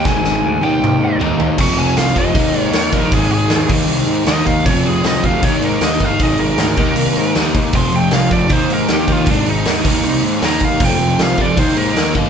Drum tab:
CC |--------|xxxxxxxx|xxxxxxxx|xxxxxxxx|
SD |oo------|--o---o-|--o---o-|--o---o-|
T1 |---o----|--------|--------|--------|
T2 |----o---|--------|--------|--------|
FT |------oo|--------|--------|--------|
BD |o-------|o--oo--o|o--o---o|o--oo--o|

CC |xxxxxxxx|xxxxxxxx|xxxxxxxx|xxxxxxxx|
SD |--o---o-|--o---o-|--o---o-|--o---o-|
T1 |--------|--------|--------|--------|
T2 |--------|--------|--------|--------|
FT |--------|--------|--------|--------|
BD |o--o---o|o--oo--o|o--o---o|o--oo--o|